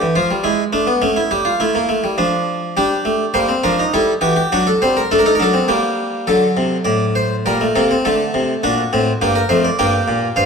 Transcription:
harpsichord
0.02 E3
0.16 F3 F4
0.31 G3
0.44 G#3 E4
0.73 A3 D4
0.87 B3
1.02 A3 C#4
1.16 E4
1.31 G3 G4
1.45 F4
1.60 A3 E4
1.75 A#3
1.89 A3
2.04 G3
2.18 F3 D4
2.77 G3 D4 G4
3.05 A3
3.34 G3 A#3 C5
3.49 C4
3.64 F3 D4 A#4
3.79 D#4
3.94 G3 E4 A4
4.21 E3 F#4 G4
4.36 G4
4.52 F#3 D4 F#4
4.67 A4
4.82 G3 C4 C5
4.97 A#4
5.11 A3 D4 A4
5.19 A#4
5.26 D#4 A4
5.35 A#4
5.39 F#3 D4 A4
5.53 C4
5.68 G3 A#3 G4
6.27 D3 F#3 A4
6.57 C3
6.85 A2 D5
7.15 C5
7.46 A#2 G3 A#4
7.61 A3
7.76 C3 A#3 A4
7.91 C4
8.05 D3 A3 A4
8.34 C3
8.63 A#2 D4 F#4
8.93 A2 C4
9.21 G2 A#3 G4
9.36 A#4
9.49 F2 A3 C5
9.64 D5
9.79 G2 A#3 G4 G5
10.08 A#2
10.36 G2 C5 F5

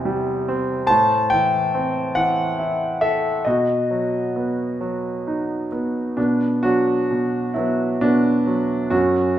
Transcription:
grand piano
Already playing: E2 C3 E3 E4 C5
0.05 G3
0.48 C4
0.87 A2 C5 A5
1.30 E3 G5
1.75 C4
2.15 E3 F#5
2.59 E4
3.01 A4 E5
3.45 B2 F#4 D#5
3.91 F#3
4.36 B3
4.81 F#3
5.27 D#4
5.72 B3
6.17 B2 B3 D4
6.63 F#3 D4 F#4
7.11 B2
7.54 F#3 B3 E4
8.01 B2 B3 D4
8.47 F#3
8.90 F#2 C#4 F#4

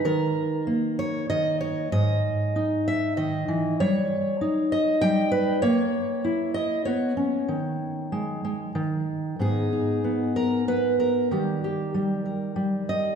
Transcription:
steel-string acoustic guitar
0.05 D#3 A#4
0.67 A#3
0.99 C#5
1.30 D#3 D#5
1.61 C#5
1.92 G#2 D#5
2.56 D#4
2.88 E5
3.17 D#3 D#5
3.48 E3
3.80 G3 C#5
4.41 D#4
4.72 D#5
5.01 G3 G5
5.32 B4
5.62 A#3 C#5
6.24 E4
6.54 D#5
6.85 B3 C#5
7.17 C#4
7.48 D#3
8.12 G#3
8.45 G#3
8.75 D#3
9.39 G#2 B3 D#4 G#4
9.73 D#4
10.04 B3
10.36 A#4
10.68 B3 B4
11.00 A#4
11.31 D#3 G3 G4
11.64 G4
11.94 G3
12.25 A#4
12.56 G3
12.89 D#5

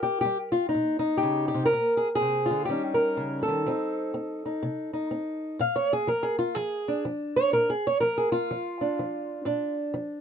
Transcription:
steel-string acoustic guitar
Already playing: D#3 A#4
0.03 G4
0.21 G4
0.25 G3
0.52 F4
0.69 D#4
0.75 A#2
0.99 D#4
1.17 G4
1.23 C#3
1.48 G4
1.54 C3
1.66 A#4
1.73 A#2
1.97 G#4
2.15 G#4
2.21 C3
2.46 F4
2.50 D3
2.65 D#3 G4
2.69 G3 C#4 D#4
2.94 A#4
3.17 C#3
3.43 A4
3.48 D#3
3.66 F3 C4 D#4
4.14 C4
4.46 D#4
4.63 C3
4.93 D#4
5.11 C4
5.59 A#2 F5
5.76 C#5
5.93 G#4
6.07 F3 A#4
6.23 G#4
6.39 F4
6.55 F3 G#4
6.88 D4
7.05 F3
7.36 C#5
7.53 A#2 A#4
7.70 G#4
7.87 C#5
8.00 F3 A#4
8.18 G#4
8.32 F4
8.51 F3
8.81 D4
8.99 F3
9.45 A#2 D4
9.94 F3

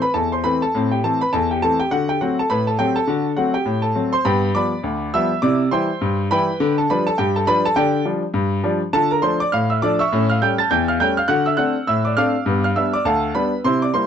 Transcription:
grand piano
0.02 B4 B5
0.14 E2 A4 A5
0.32 C5 C6
0.44 E3 A3 C4 B4 B5
0.62 A4 A5
0.75 A2 C4
0.91 G4 G5
1.04 E3 A3 C4 A4 A5
1.21 B4 B5
1.33 E2 A4 A5
1.51 G4 G5
1.62 E3 A3 C4 A4 A5
1.80 G4 G5
1.91 D3 F#4 F#5
2.09 G4 G5
2.21 F#3 A3 C4 F#4 F#5
2.39 A4 A5
2.50 A2 B4 B5
2.67 A4 A5
2.79 F#3 A3 C4 G4 G5
2.96 A4 A5
3.07 D3 F#4
3.37 F#3 A3 C4 F#4 F#5
3.54 G4 G5
3.66 A2
3.82 A4 A5
3.95 F#3 A3 C4
4.13 C5 C6
4.25 G2 B3 B4 G5 B5
4.55 F3 G3 B3 D5 B5 D6
4.84 D2
5.14 F3 G3 B3 E5 E6
5.42 C3 E4 D5 D6
5.71 E3 G3 E4 C5 G5 C6
6.01 G2
6.31 E3 G3 E4 B4 G5 B5
6.60 D3
6.78 A4 A5
6.90 F3 G3 D4 B4 B5
7.07 A4 A5
7.18 G2 G4 G5
7.36 A4 A5
7.47 F3 G3 D4 B4 B5
7.65 A4 A5
7.76 D3 G4 D5 G5
8.05 F3 G3 D4
8.34 G2
8.63 F3 G3 D4
8.93 D3 F4 A4 A5
9.11 A#4 A#5
9.22 F3 A3 D4 C5 C6
9.40 D5 D6
9.52 A2 F5 F6
9.70 E5 E6
9.82 F3 A3 D4 D5 D6
9.99 E5 C#6 E6
10.13 A2 C#4
10.30 F5 F6
10.42 G3 A3 C#4 G5 G6
10.58 A5 A6
10.71 E2 G5 G6
10.88 F5 F6
11.00 G3 A3 C#4 G5 G6
11.17 F5 F6
11.28 D3 F#4 F#5 F#6
11.46 E5 E6
11.57 A3 C4 D4 F#5 F#6
11.87 A2 E5 E6
12.05 D5 D6
12.17 A3 C4 D4 F5 D6 F6
12.46 G2 B3
12.64 F5 F6
12.76 G3 B3 D4 E5 E6
12.94 D5 D6
13.05 D2 A4 F5 A5
13.35 G3 B3 D4 B4 B5
13.65 C3 E4 C5 C6
13.82 D5 D6
13.94 G3 A#3 E4 C5 C6

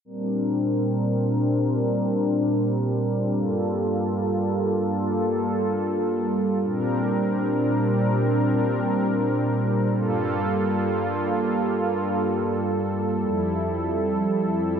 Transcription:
analog synth pad
0.05 A#2 G3 C4 D4 A#4
3.33 G2 A#3 F4 A4
6.62 A#2 G3 C4 D4 A#4
9.91 G2 G3 A#3 F4 A4
13.20 F2 F3 E4

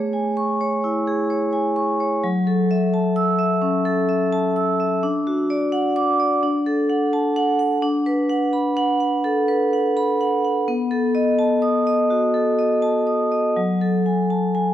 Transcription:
vibraphone
Already playing: A3 G#4 C#5
0.13 G#5
0.37 C#6
0.61 C#5
0.84 E4
1.08 G#4
1.30 C#5
1.53 G#5
1.76 C#6
2.00 C#5
2.24 F#3
2.47 A4
2.71 E5
2.94 A5
3.16 E6
3.39 E5
3.62 C#4
3.85 A4
4.09 E5
4.33 A5
4.56 E6
4.80 E5
5.03 D4
5.27 F#4
5.50 D5
5.72 F#5
5.96 D6
6.20 D5
6.43 D4
6.66 A4
6.90 F#5
7.13 A5
7.36 F#5
7.59 F#5
7.82 D4
8.06 B4
8.29 F#5
8.53 B5
8.77 F#5
9.00 F#5
9.24 A4
9.48 B4
9.73 F#5
9.97 B5
10.21 F#5
10.45 F#5
10.68 B3
10.91 A4
11.15 D#5
11.39 A5
11.62 D#6
11.87 D#5
12.10 F#4
12.34 A4
12.59 D#5
12.82 A5
13.07 D#6
13.32 D#5
13.57 F#3
13.81 A4
14.06 G#5
14.30 A5
14.55 G#5

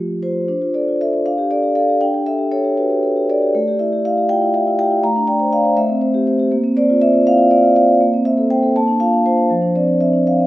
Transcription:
vibraphone
Already playing: F3 A3 F4 G4
0.23 F4 C5
0.48 D4
0.62 F4
0.74 A4 D5
0.88 F4
1.01 A4 E5
1.13 F4
1.26 D4 F5
1.38 G4
1.51 A4 D5
1.63 G4
1.75 A4 F5
1.89 G4
2.01 D4 G5
2.14 G4
2.26 A4 E5
2.38 G4
2.52 A4 C#5
2.64 G4
2.77 F#4 B4
2.90 G4
3.03 A4
3.17 G4
3.29 A4 D5
3.42 G4
3.55 A3
3.68 G4
3.79 E4 E5
3.93 G4
4.05 E4 F5
4.17 G4
4.29 F4 G5
4.42 E4
4.54 G4 E5
4.67 E4
4.79 G4 G5
4.91 E4
5.03 A3 A#5
5.16 D4
5.27 D5 G5
5.40 C5
5.52 D5 F5
5.65 C5
5.77 A3 E5
5.89 C4
6.01 C5
6.14 G4
6.27 C5
6.39 G4
6.51 A#3
6.64 C4
6.77 C5 D5
6.90 F4
7.02 C5 E5
7.13 F4
7.27 E4 F5
7.38 F4
7.51 C5 D5
7.63 F4
7.76 C5 F5
7.88 F4
8.01 A#3
8.13 C4
8.25 C5 E5
8.37 A4
8.50 C5 G5
8.63 A4
8.76 A#3 A5
8.87 D4
9.00 F4 F5
9.13 D4
9.26 F4 C5
9.37 D4
9.50 F3
9.62 D4
9.75 C4 D5
9.88 D4
10.01 C4 E5
10.13 D4
10.27 C4 F5
10.40 C4

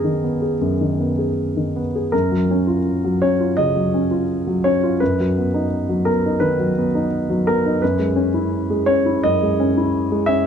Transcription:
grand piano
Already playing: F#2 D#3 B3 G#4 A#4
0.04 D#3
0.24 B3
0.42 G#4
0.61 F#2
0.81 D#3
1.00 B3
1.18 G#4
1.57 D#3
1.76 B3
1.95 G#4
2.12 F#2 A#4
2.31 F#3
2.51 C#4
2.67 F4
3.04 F#3
3.22 C#4 C#5
3.40 F4
3.57 C#3 D#5
3.77 F#3
3.94 C#4
4.11 F4
4.47 F#3
4.64 C#4 C#5
4.83 F4
5.00 F#2 B4
5.20 F#3
5.38 B3
5.54 D#4
5.89 F#3
6.05 B3 A#4
6.26 D#4
6.40 D#3 B4
6.59 F#3
6.78 B3
6.95 D#4
7.30 F#3
7.47 B3 A#4
7.66 D#4
7.82 F#2 B4
7.99 G#3
8.16 C#4
8.34 E4
8.70 G#3
8.86 C#4 C#5
9.06 E4
9.24 F#2 D#5
9.43 G#3
9.60 C#4
9.77 E4
10.12 G#3
10.26 C#4 E5

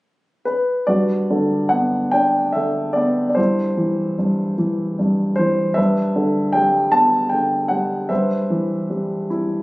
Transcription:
grand piano
0.45 B4
0.87 G2 F#4 B4 D5
1.30 D3
1.69 B3 F#5
2.11 D4 G5
2.53 D3 E5
2.93 B3 D5
3.29 D5
3.35 G2 E4 C5
3.77 E3
4.19 G2
4.58 E3
4.99 G2
5.36 E3 C5
5.74 G2 B4 E5
6.16 D3
6.53 G3 G5
6.92 B3 A5
7.29 D3 G5
7.68 G3 F#5
8.09 G2 B4 C5 E5
8.50 E3
8.90 G3
9.30 E4

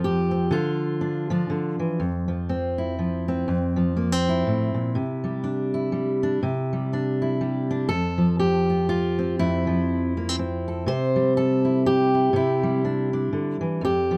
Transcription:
steel-string acoustic guitar
Already playing: F2 F3 C4 F4
0.04 G4
0.31 C4
0.51 D3 F4
1.01 D4
1.30 F3 D4
1.50 D3
1.79 E3
2.00 F2
2.28 F3
2.49 C4
2.78 E4
2.99 F3
3.28 C4
3.48 F2
3.76 F3
3.97 A#3
4.12 C4
4.29 E4
4.47 A2
4.74 A#2
4.95 C3
5.24 G3
5.44 D4
5.74 E4
5.92 G3
6.23 D4
6.43 C3
6.73 G3
6.93 D4
7.22 E4
7.41 G3
7.71 D4
7.89 F2 A4
8.18 F3
8.39 G4
8.70 F4
8.89 F4
9.19 C4
9.39 F2 E4
9.67 F3
10.17 A#3
10.29 C4
10.39 C4
10.68 A4
10.86 C3 C5
11.16 G3
11.37 A4
11.65 E4
11.86 G4
12.14 E4
12.33 C3 E4
12.63 G3
12.85 D4
13.13 D4
13.33 D3
13.61 E3
13.81 F2 G4
14.11 F3

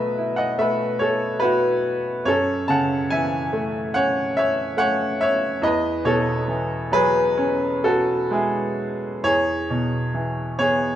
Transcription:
grand piano
Already playing: B2 F#3 A3 F#4 B4 D#5 E5
0.18 E4
0.36 D#5 F#5
0.58 A3 B4 E5
0.99 A4 C#5
1.40 E4 F#4 B4
2.25 F#2 A4 C#5
2.68 C#3 F#5 A5
3.10 E3 E5 G#5
3.53 A3
3.94 C#4 C#5 F#5
4.37 C#5 E5
4.77 A3 C#5 F#5
5.21 C#5 E5
5.62 E2 B4 D#5
6.05 B2 A4 C#5
6.48 E3
6.92 F#3 G#4 B4
7.37 C#4
7.84 F#4 A4
8.31 G#3 E4 G#4
9.23 E2 G#4 C#5
9.70 B2
10.14 E3
10.59 B3 G#4 C#5

